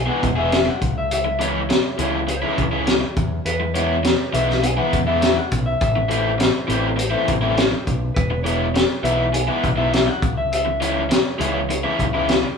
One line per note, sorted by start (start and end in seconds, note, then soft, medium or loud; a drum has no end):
0.06 0.27 E3 medium
0.06 0.26 G#3 medium
0.06 0.26 B3 medium
0.06 0.26 G#4 medium
0.06 0.38 F#5 medium
0.23 0.68 E1 medium
0.23 kick medium
0.23 closed hi-hat medium
0.36 0.56 E3 medium
0.36 0.56 G#3 medium
0.36 0.56 B3 medium
0.36 0.56 G#4 medium
0.36 0.51 E5 medium
0.52 0.68 E5 loud
0.52 snare medium
0.52 closed hi-hat medium
0.65 0.97 F#5 medium
0.65 muted overdriven electric guitar stroke soft
0.82 1.71 C#2 medium
0.82 kick medium
0.82 closed hi-hat medium
0.98 1.10 E5 medium
1.11 1.41 E5 loud
1.11 closed hi-hat medium
1.25 muted overdriven electric guitar stroke soft
1.39 1.59 E3 medium
1.39 1.59 G#3 medium
1.39 1.59 C#4 medium
1.39 1.59 E4 medium
1.39 1.99 C#5 medium
1.39 closed hi-hat medium
1.69 muted overdriven electric guitar stroke soft
1.69 snare loud
1.69 closed hi-hat medium
1.98 2.44 C#2 medium
1.98 2.18 E3 medium
1.98 2.18 G#3 medium
1.98 2.18 C#4 medium
1.98 2.18 E4 medium
1.98 2.30 C#5 medium
1.98 closed hi-hat medium
2.27 3.14 C#5 medium
2.27 muted overdriven electric guitar stroke soft
2.27 closed hi-hat medium
2.42 2.62 E3 medium
2.42 2.62 G#3 medium
2.42 2.62 C#4 medium
2.42 2.62 E4 medium
2.58 3.03 C#2 medium
2.58 kick medium
2.58 closed hi-hat soft
2.71 2.92 E3 medium
2.71 2.92 G#3 medium
2.71 2.91 C#4 medium
2.71 2.91 E4 medium
2.87 snare loud
2.87 closed hi-hat medium
3.01 muted overdriven electric guitar stroke soft
3.16 3.39 E2 medium
3.16 kick medium
3.16 closed hi-hat soft
3.45 4.13 E2 medium
3.45 3.73 B4 medium
3.45 closed hi-hat medium
3.60 muted overdriven electric guitar stroke soft
3.74 3.94 E3 medium
3.74 3.94 G#3 medium
3.74 3.95 B3 loud
3.74 3.95 E4 medium
3.74 4.35 C#5 medium
3.74 closed hi-hat medium
4.04 muted overdriven electric guitar stroke soft
4.04 snare loud
4.04 closed hi-hat medium
4.33 4.79 B1 medium
4.33 4.53 E3 medium
4.33 4.53 G#3 medium
4.33 4.53 B3 medium
4.33 4.53 E4 medium
4.33 4.62 E5 medium
4.33 closed hi-hat medium
4.50 snare soft
4.62 4.77 G#5 loud
4.62 muted overdriven electric guitar stroke soft
4.62 closed hi-hat medium
4.77 4.98 E3 medium
4.77 4.98 G#3 medium
4.77 4.97 B3 medium
4.77 4.97 E4 medium
4.77 5.06 F#5 loud
4.93 5.38 E2 medium
4.93 kick medium
4.93 closed hi-hat medium
5.06 5.27 E3 medium
5.06 5.27 G#3 medium
5.06 5.27 B3 medium
5.06 5.27 E4 medium
5.06 5.19 E5 medium
5.21 5.36 E5 loud
5.21 snare medium
5.21 closed hi-hat medium
5.36 5.66 F#5 medium
5.36 muted overdriven electric guitar stroke soft
5.51 5.74 B1 medium
5.51 kick medium
5.51 closed hi-hat medium
5.66 5.80 E5 medium
5.81 6.49 A1 medium
5.81 6.12 E5 loud
5.81 kick loud
5.81 closed hi-hat medium
5.96 muted overdriven electric guitar stroke soft
6.09 6.29 E3 medium
6.09 6.29 A3 medium
6.09 6.29 C4 medium
6.09 6.30 E4 medium
6.09 6.67 C5 medium
6.09 closed hi-hat medium
6.38 muted overdriven electric guitar stroke soft
6.38 snare loud
6.38 closed hi-hat medium
6.68 7.14 A1 medium
6.68 6.88 E3 medium
6.68 6.88 A3 medium
6.68 6.88 C4 medium
6.68 6.89 E4 medium
6.68 6.97 C5 medium
6.68 closed hi-hat medium
6.97 7.83 C5 medium
6.97 muted overdriven electric guitar stroke soft
6.97 closed hi-hat medium
7.11 7.32 E3 medium
7.11 7.32 A3 medium
7.11 7.32 C4 medium
7.11 7.31 E4 medium
7.28 7.73 A1 medium
7.28 kick medium
7.28 closed hi-hat medium
7.42 7.62 E3 medium
7.42 7.62 A3 medium
7.42 7.62 C4 medium
7.42 7.62 E4 medium
7.57 snare loud
7.57 closed hi-hat medium
7.71 muted overdriven electric guitar stroke soft
7.87 8.10 B1 medium
7.87 kick medium
7.87 closed hi-hat medium
8.14 8.84 E1 medium
8.14 8.43 B4 medium
8.14 kick loud
8.14 closed hi-hat medium
8.31 muted overdriven electric guitar stroke soft
8.43 8.64 E3 medium
8.43 8.65 G#3 medium
8.43 8.65 B3 medium
8.43 8.65 E4 medium
8.43 9.05 C#5 medium
8.43 closed hi-hat medium
8.74 muted overdriven electric guitar stroke soft
8.74 snare loud
8.74 closed hi-hat medium
9.03 9.49 B1 medium
9.03 9.23 E3 medium
9.03 9.23 G#3 medium
9.03 9.24 B3 medium
9.03 9.24 E4 medium
9.03 9.33 E5 medium
9.03 closed hi-hat medium
9.33 9.48 G#5 medium
9.33 muted overdriven electric guitar stroke soft
9.33 closed hi-hat medium
9.48 9.68 E3 medium
9.48 9.68 G#3 medium
9.48 9.68 B3 medium
9.48 9.68 E4 medium
9.48 9.77 F#5 medium
9.64 10.09 B1 medium
9.64 kick medium
9.64 closed hi-hat soft
9.78 9.97 E3 medium
9.78 9.97 G#3 medium
9.78 9.97 B3 medium
9.78 9.97 E4 medium
9.78 9.92 E5 medium
9.93 10.07 E5 medium
9.93 snare medium
9.93 closed hi-hat medium
10.07 10.37 F#5 medium
10.07 muted overdriven electric guitar stroke soft
10.22 11.12 C#2 medium
10.22 kick medium
10.22 closed hi-hat medium
10.37 10.51 E5 medium
10.52 10.82 E5 medium
10.52 closed hi-hat medium
10.65 muted overdriven electric guitar stroke soft
10.81 11.00 E3 medium
10.81 11.00 G#3 medium
10.81 11.00 C#4 medium
10.81 11.00 E4 loud
10.81 11.39 C#5 medium
10.81 closed hi-hat medium
11.10 muted overdriven electric guitar stroke soft
11.10 snare loud
11.10 closed hi-hat medium
11.39 11.85 C#2 medium
11.39 11.58 E3 medium
11.39 11.58 G#3 medium
11.39 11.59 C#4 medium
11.39 11.59 E4 medium
11.39 11.67 C#5 medium
11.39 closed hi-hat medium
11.69 12.53 C#5 medium
11.69 muted overdriven electric guitar stroke soft
11.69 closed hi-hat medium
11.83 12.03 E3 medium
11.83 12.03 G#3 medium
11.83 12.03 C#4 medium
11.83 12.03 E4 medium
11.99 12.44 C#2 medium
11.99 kick medium
11.99 closed hi-hat medium
12.13 12.33 E3 medium
12.13 12.33 G#3 medium
12.13 12.32 C#4 medium
12.13 12.32 E4 medium
12.29 snare medium
12.29 closed hi-hat medium
12.43 muted overdriven electric guitar stroke soft